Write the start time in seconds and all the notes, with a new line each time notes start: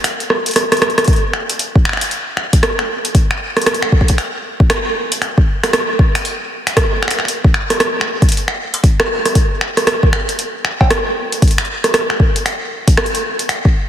0.04 finger snap, closed hi-hat
0.20 closed hi-hat
0.30 cross-stick
0.46 closed hi-hat
0.49 closed hi-hat
0.51 closed hi-hat
0.54 cross-stick, closed hi-hat
0.56 closed hi-hat
0.72 cross-stick, closed hi-hat
0.77 closed hi-hat
0.82 cross-stick, closed hi-hat
0.90 closed hi-hat
0.98 cross-stick, closed hi-hat
1.04 closed hi-hat
1.08 kick, closed hi-hat
1.13 closed hi-hat
1.16 closed hi-hat
1.33 finger snap
1.50 closed hi-hat
1.59 closed hi-hat
1.75 kick
1.85 finger snap
1.89 finger snap
1.93 finger snap
1.97 finger snap
2.01 closed hi-hat
2.11 closed hi-hat
2.37 finger snap
2.53 kick, closed hi-hat
2.63 cross-stick, closed hi-hat
2.79 finger snap
3.05 closed hi-hat
3.15 kick, closed hi-hat
3.31 finger snap
3.57 cross-stick, closed hi-hat
3.62 closed hi-hat
3.66 cross-stick, closed hi-hat
3.74 closed hi-hat
3.82 finger snap
3.92 kick
4.01 kick
4.08 kick, closed hi-hat
4.18 finger snap, closed hi-hat
4.60 kick
4.70 finger snap, cross-stick, closed hi-hat
5.12 closed hi-hat
5.22 finger snap, closed hi-hat
5.38 kick
5.63 finger snap, cross-stick, closed hi-hat
5.73 cross-stick, closed hi-hat
5.99 kick
6.15 finger snap, closed hi-hat
6.25 closed hi-hat
6.67 finger snap, closed hi-hat
6.77 kick, cross-stick, closed hi-hat
7.03 finger snap
7.08 finger snap, closed hi-hat
7.11 finger snap
7.19 finger snap
7.25 finger snap, closed hi-hat
7.44 kick
7.54 finger snap
7.70 cross-stick, closed hi-hat
7.80 cross-stick, closed hi-hat
8.01 finger snap
8.22 kick, closed hi-hat
8.29 closed hi-hat
8.32 closed hi-hat
8.37 closed hi-hat
8.48 finger snap
8.74 closed hi-hat
8.84 kick, closed hi-hat
9.00 finger snap, cross-stick
9.26 cross-stick, closed hi-hat
9.35 kick, closed hi-hat
9.61 finger snap
9.77 cross-stick, closed hi-hat
9.87 cross-stick, closed hi-hat
10.03 kick
10.13 finger snap
10.29 closed hi-hat
10.39 closed hi-hat
10.65 finger snap
10.81 kick, cowbell
10.90 cross-stick, closed hi-hat
11.32 closed hi-hat
11.42 kick, closed hi-hat
11.48 closed hi-hat
11.51 closed hi-hat
11.58 finger snap, closed hi-hat
11.65 closed hi-hat
11.84 cross-stick, closed hi-hat
11.94 cross-stick, closed hi-hat
12.10 finger snap
12.20 kick
12.36 closed hi-hat
12.46 finger snap, closed hi-hat
12.88 kick, closed hi-hat
12.97 finger snap, cross-stick
13.06 closed hi-hat
13.15 closed hi-hat
13.39 closed hi-hat
13.49 finger snap, closed hi-hat
13.65 kick